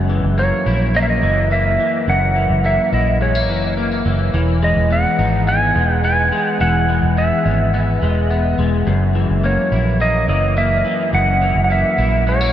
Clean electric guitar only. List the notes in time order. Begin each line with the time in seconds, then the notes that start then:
Already playing: F#2
0.09 E3
0.38 A#3
0.66 E4
0.94 A#3
1.23 E3
1.51 A#3
1.79 E3
2.08 F#2
2.36 E3
2.64 A#3
2.93 E4
3.21 G#3
3.35 A#3
3.49 E3
3.77 A#3
4.06 E3
4.34 E3
4.62 G#3
4.90 B3
5.19 D#4
5.47 B3
5.75 G#3
6.04 B3
6.32 G#3
6.61 E3
6.89 G#3
7.17 B3
7.45 C#4
7.74 B3
8.02 G#3
8.31 B3
8.59 G#3
8.87 F#2
9.15 E3
9.43 A#3
9.72 E4
10.00 A#3
10.29 E3
10.57 A#3
10.85 E3
11.13 F#2
11.41 E3
11.70 A#3
11.98 E4
12.27 G#3
12.41 A#3